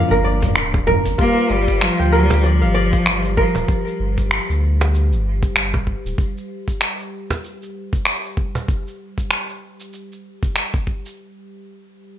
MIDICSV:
0, 0, Header, 1, 8, 480
1, 0, Start_track
1, 0, Key_signature, -2, "minor"
1, 0, Tempo, 625000
1, 909, Time_signature, 4, 2, 24, 8
1, 9360, End_track
2, 0, Start_track
2, 0, Title_t, "Kora"
2, 0, Program_c, 0, 46
2, 0, Note_on_c, 0, 65, 84
2, 0, Note_on_c, 0, 74, 105
2, 0, Note_on_c, 0, 77, 84
2, 85, Note_on_c, 0, 70, 73
2, 184, Note_off_c, 0, 74, 0
2, 187, Note_on_c, 0, 74, 81
2, 627, Note_off_c, 0, 65, 0
2, 664, Note_off_c, 0, 70, 0
2, 667, Note_on_c, 0, 70, 98
2, 712, Note_off_c, 0, 77, 0
2, 908, Note_on_c, 0, 65, 80
2, 1038, Note_off_c, 0, 74, 0
2, 1387, Note_off_c, 0, 65, 0
2, 1390, Note_on_c, 0, 65, 72
2, 1531, Note_on_c, 0, 79, 72
2, 1628, Note_off_c, 0, 70, 0
2, 1631, Note_on_c, 0, 70, 90
2, 1872, Note_on_c, 0, 74, 80
2, 2008, Note_on_c, 0, 77, 68
2, 2104, Note_off_c, 0, 74, 0
2, 2108, Note_on_c, 0, 74, 98
2, 2247, Note_off_c, 0, 79, 0
2, 2552, Note_off_c, 0, 65, 0
2, 2587, Note_off_c, 0, 70, 0
2, 2590, Note_on_c, 0, 70, 97
2, 2775, Note_off_c, 0, 77, 0
2, 2958, Note_off_c, 0, 74, 0
2, 3568, Note_off_c, 0, 70, 0
2, 9360, End_track
3, 0, Start_track
3, 0, Title_t, "Singing bowl"
3, 0, Program_c, 1, 14
3, 908, Note_on_c, 1, 67, 72
3, 909, Note_on_c, 1, 55, 75
3, 4759, Note_off_c, 1, 67, 0
3, 4760, Note_off_c, 1, 55, 0
3, 9360, End_track
4, 0, Start_track
4, 0, Title_t, "Clean electric guitar"
4, 0, Program_c, 2, 27
4, 0, Note_on_c, 2, 53, 94
4, 0, Note_on_c, 2, 58, 81
4, 0, Note_on_c, 2, 62, 83
4, 0, Note_on_c, 2, 70, 101
4, 876, Note_off_c, 2, 53, 0
4, 881, Note_off_c, 2, 58, 0
4, 886, Note_off_c, 2, 62, 0
4, 891, Note_off_c, 2, 70, 0
4, 9360, End_track
5, 0, Start_track
5, 0, Title_t, "Cello"
5, 0, Program_c, 3, 42
5, 0, Note_on_c, 3, 53, 102
5, 436, Note_off_c, 3, 53, 0
5, 923, Note_on_c, 3, 58, 104
5, 1156, Note_on_c, 3, 55, 92
5, 1168, Note_off_c, 3, 58, 0
5, 1395, Note_on_c, 3, 53, 96
5, 1406, Note_off_c, 3, 55, 0
5, 1639, Note_on_c, 3, 55, 93
5, 1650, Note_off_c, 3, 53, 0
5, 1877, Note_on_c, 3, 53, 100
5, 1888, Note_off_c, 3, 55, 0
5, 2582, Note_off_c, 3, 53, 0
5, 2586, Note_on_c, 3, 53, 76
5, 2810, Note_off_c, 3, 53, 0
5, 9360, End_track
6, 0, Start_track
6, 0, Title_t, "Sub bass"
6, 0, Program_c, 4, 38
6, 81, Note_on_c, 4, 31, 92
6, 370, Note_off_c, 4, 31, 0
6, 427, Note_on_c, 4, 26, 95
6, 731, Note_off_c, 4, 26, 0
6, 812, Note_on_c, 4, 31, 96
6, 876, Note_off_c, 4, 31, 0
6, 1150, Note_on_c, 4, 31, 101
6, 1452, Note_off_c, 4, 31, 0
6, 1532, Note_on_c, 4, 38, 88
6, 2012, Note_on_c, 4, 31, 98
6, 2023, Note_off_c, 4, 38, 0
6, 2295, Note_off_c, 4, 31, 0
6, 2352, Note_on_c, 4, 31, 77
6, 2653, Note_off_c, 4, 31, 0
6, 2731, Note_on_c, 4, 26, 95
6, 2796, Note_off_c, 4, 26, 0
6, 3069, Note_on_c, 4, 31, 100
6, 3372, Note_off_c, 4, 31, 0
6, 3452, Note_on_c, 4, 38, 90
6, 3929, Note_on_c, 4, 31, 91
6, 3940, Note_off_c, 4, 38, 0
6, 4214, Note_off_c, 4, 31, 0
6, 4266, Note_on_c, 4, 31, 82
6, 4570, Note_off_c, 4, 31, 0
6, 4647, Note_on_c, 4, 26, 96
6, 4714, Note_off_c, 4, 26, 0
6, 9360, End_track
7, 0, Start_track
7, 0, Title_t, "Cajon"
7, 569, Note_on_c, 9, 36, 77
7, 570, Note_on_c, 9, 38, 57
7, 646, Note_off_c, 9, 36, 0
7, 647, Note_off_c, 9, 38, 0
7, 1768, Note_on_c, 9, 36, 80
7, 1771, Note_on_c, 9, 38, 88
7, 1845, Note_off_c, 9, 36, 0
7, 1848, Note_off_c, 9, 38, 0
7, 2725, Note_on_c, 9, 38, 58
7, 2730, Note_on_c, 9, 36, 74
7, 2802, Note_off_c, 9, 38, 0
7, 2806, Note_off_c, 9, 36, 0
7, 3696, Note_on_c, 9, 38, 90
7, 3773, Note_off_c, 9, 38, 0
7, 4408, Note_on_c, 9, 38, 63
7, 4409, Note_on_c, 9, 36, 64
7, 4484, Note_off_c, 9, 38, 0
7, 4486, Note_off_c, 9, 36, 0
7, 5610, Note_on_c, 9, 36, 84
7, 5610, Note_on_c, 9, 38, 77
7, 5687, Note_off_c, 9, 36, 0
7, 5687, Note_off_c, 9, 38, 0
7, 6568, Note_on_c, 9, 38, 62
7, 6569, Note_on_c, 9, 36, 77
7, 6645, Note_off_c, 9, 36, 0
7, 6645, Note_off_c, 9, 38, 0
7, 9360, End_track
8, 0, Start_track
8, 0, Title_t, "Drums"
8, 89, Note_on_c, 9, 69, 33
8, 166, Note_off_c, 9, 69, 0
8, 325, Note_on_c, 9, 45, 81
8, 325, Note_on_c, 9, 46, 59
8, 327, Note_on_c, 9, 36, 101
8, 332, Note_on_c, 9, 69, 64
8, 402, Note_off_c, 9, 45, 0
8, 402, Note_off_c, 9, 46, 0
8, 404, Note_off_c, 9, 36, 0
8, 409, Note_off_c, 9, 69, 0
8, 427, Note_on_c, 9, 26, 101
8, 427, Note_on_c, 9, 46, 47
8, 433, Note_on_c, 9, 69, 55
8, 503, Note_off_c, 9, 26, 0
8, 503, Note_off_c, 9, 46, 0
8, 510, Note_off_c, 9, 69, 0
8, 569, Note_on_c, 9, 36, 101
8, 575, Note_on_c, 9, 69, 34
8, 646, Note_off_c, 9, 36, 0
8, 652, Note_off_c, 9, 69, 0
8, 670, Note_on_c, 9, 45, 83
8, 671, Note_on_c, 9, 36, 62
8, 746, Note_off_c, 9, 45, 0
8, 748, Note_off_c, 9, 36, 0
8, 810, Note_on_c, 9, 46, 66
8, 817, Note_on_c, 9, 69, 71
8, 887, Note_off_c, 9, 46, 0
8, 893, Note_off_c, 9, 69, 0
8, 913, Note_on_c, 9, 36, 119
8, 921, Note_on_c, 9, 69, 56
8, 990, Note_off_c, 9, 36, 0
8, 998, Note_off_c, 9, 69, 0
8, 1060, Note_on_c, 9, 69, 31
8, 1136, Note_off_c, 9, 69, 0
8, 1292, Note_on_c, 9, 36, 60
8, 1300, Note_on_c, 9, 69, 69
8, 1369, Note_off_c, 9, 36, 0
8, 1377, Note_off_c, 9, 69, 0
8, 1393, Note_on_c, 9, 26, 103
8, 1400, Note_on_c, 9, 69, 53
8, 1470, Note_off_c, 9, 26, 0
8, 1477, Note_off_c, 9, 69, 0
8, 1542, Note_on_c, 9, 69, 34
8, 1618, Note_off_c, 9, 69, 0
8, 1779, Note_on_c, 9, 69, 68
8, 1856, Note_off_c, 9, 69, 0
8, 1878, Note_on_c, 9, 69, 52
8, 1955, Note_off_c, 9, 69, 0
8, 2014, Note_on_c, 9, 69, 30
8, 2091, Note_off_c, 9, 69, 0
8, 2250, Note_on_c, 9, 36, 103
8, 2254, Note_on_c, 9, 69, 66
8, 2327, Note_off_c, 9, 36, 0
8, 2331, Note_off_c, 9, 69, 0
8, 2350, Note_on_c, 9, 26, 91
8, 2357, Note_on_c, 9, 69, 52
8, 2427, Note_off_c, 9, 26, 0
8, 2434, Note_off_c, 9, 69, 0
8, 2495, Note_on_c, 9, 69, 32
8, 2571, Note_off_c, 9, 69, 0
8, 2591, Note_on_c, 9, 36, 105
8, 2668, Note_off_c, 9, 36, 0
8, 2735, Note_on_c, 9, 69, 64
8, 2812, Note_off_c, 9, 69, 0
8, 2830, Note_on_c, 9, 36, 117
8, 2837, Note_on_c, 9, 69, 54
8, 2907, Note_off_c, 9, 36, 0
8, 2914, Note_off_c, 9, 69, 0
8, 2975, Note_on_c, 9, 69, 34
8, 3051, Note_off_c, 9, 69, 0
8, 3208, Note_on_c, 9, 36, 59
8, 3216, Note_on_c, 9, 69, 69
8, 3285, Note_off_c, 9, 36, 0
8, 3293, Note_off_c, 9, 69, 0
8, 3310, Note_on_c, 9, 26, 96
8, 3317, Note_on_c, 9, 69, 53
8, 3387, Note_off_c, 9, 26, 0
8, 3394, Note_off_c, 9, 69, 0
8, 3459, Note_on_c, 9, 69, 33
8, 3536, Note_off_c, 9, 69, 0
8, 3695, Note_on_c, 9, 69, 70
8, 3771, Note_off_c, 9, 69, 0
8, 3799, Note_on_c, 9, 69, 49
8, 3876, Note_off_c, 9, 69, 0
8, 3936, Note_on_c, 9, 69, 33
8, 4012, Note_off_c, 9, 69, 0
8, 4167, Note_on_c, 9, 36, 106
8, 4172, Note_on_c, 9, 69, 65
8, 4244, Note_off_c, 9, 36, 0
8, 4249, Note_off_c, 9, 69, 0
8, 4268, Note_on_c, 9, 26, 97
8, 4275, Note_on_c, 9, 69, 49
8, 4345, Note_off_c, 9, 26, 0
8, 4352, Note_off_c, 9, 69, 0
8, 4407, Note_on_c, 9, 36, 102
8, 4416, Note_on_c, 9, 69, 32
8, 4484, Note_off_c, 9, 36, 0
8, 4493, Note_off_c, 9, 69, 0
8, 4508, Note_on_c, 9, 36, 58
8, 4585, Note_off_c, 9, 36, 0
8, 4657, Note_on_c, 9, 69, 65
8, 4734, Note_off_c, 9, 69, 0
8, 4748, Note_on_c, 9, 36, 121
8, 4757, Note_on_c, 9, 69, 51
8, 4824, Note_off_c, 9, 36, 0
8, 4834, Note_off_c, 9, 69, 0
8, 4895, Note_on_c, 9, 69, 31
8, 4972, Note_off_c, 9, 69, 0
8, 5128, Note_on_c, 9, 36, 59
8, 5135, Note_on_c, 9, 69, 65
8, 5205, Note_off_c, 9, 36, 0
8, 5212, Note_off_c, 9, 69, 0
8, 5229, Note_on_c, 9, 26, 97
8, 5236, Note_on_c, 9, 69, 55
8, 5306, Note_off_c, 9, 26, 0
8, 5313, Note_off_c, 9, 69, 0
8, 5374, Note_on_c, 9, 69, 33
8, 5450, Note_off_c, 9, 69, 0
8, 5614, Note_on_c, 9, 69, 69
8, 5691, Note_off_c, 9, 69, 0
8, 5717, Note_on_c, 9, 69, 49
8, 5794, Note_off_c, 9, 69, 0
8, 5856, Note_on_c, 9, 69, 30
8, 5933, Note_off_c, 9, 69, 0
8, 6089, Note_on_c, 9, 36, 95
8, 6096, Note_on_c, 9, 69, 64
8, 6166, Note_off_c, 9, 36, 0
8, 6173, Note_off_c, 9, 69, 0
8, 6186, Note_on_c, 9, 26, 93
8, 6193, Note_on_c, 9, 69, 55
8, 6263, Note_off_c, 9, 26, 0
8, 6269, Note_off_c, 9, 69, 0
8, 6336, Note_on_c, 9, 69, 31
8, 6412, Note_off_c, 9, 69, 0
8, 6429, Note_on_c, 9, 36, 95
8, 6506, Note_off_c, 9, 36, 0
8, 6574, Note_on_c, 9, 69, 67
8, 6650, Note_off_c, 9, 69, 0
8, 6670, Note_on_c, 9, 36, 113
8, 6675, Note_on_c, 9, 69, 51
8, 6746, Note_off_c, 9, 36, 0
8, 6752, Note_off_c, 9, 69, 0
8, 6816, Note_on_c, 9, 69, 31
8, 6893, Note_off_c, 9, 69, 0
8, 7048, Note_on_c, 9, 36, 54
8, 7054, Note_on_c, 9, 69, 69
8, 7125, Note_off_c, 9, 36, 0
8, 7131, Note_off_c, 9, 69, 0
8, 7146, Note_on_c, 9, 26, 91
8, 7153, Note_on_c, 9, 69, 53
8, 7223, Note_off_c, 9, 26, 0
8, 7230, Note_off_c, 9, 69, 0
8, 7291, Note_on_c, 9, 69, 31
8, 7368, Note_off_c, 9, 69, 0
8, 7528, Note_on_c, 9, 69, 64
8, 7605, Note_off_c, 9, 69, 0
8, 7628, Note_on_c, 9, 69, 50
8, 7705, Note_off_c, 9, 69, 0
8, 7774, Note_on_c, 9, 69, 29
8, 7850, Note_off_c, 9, 69, 0
8, 8007, Note_on_c, 9, 36, 95
8, 8015, Note_on_c, 9, 69, 63
8, 8084, Note_off_c, 9, 36, 0
8, 8091, Note_off_c, 9, 69, 0
8, 8107, Note_on_c, 9, 26, 84
8, 8114, Note_on_c, 9, 69, 52
8, 8184, Note_off_c, 9, 26, 0
8, 8191, Note_off_c, 9, 69, 0
8, 8247, Note_on_c, 9, 36, 94
8, 8258, Note_on_c, 9, 69, 30
8, 8324, Note_off_c, 9, 36, 0
8, 8334, Note_off_c, 9, 69, 0
8, 8349, Note_on_c, 9, 36, 57
8, 8425, Note_off_c, 9, 36, 0
8, 8494, Note_on_c, 9, 69, 59
8, 8570, Note_off_c, 9, 69, 0
8, 9360, End_track
0, 0, End_of_file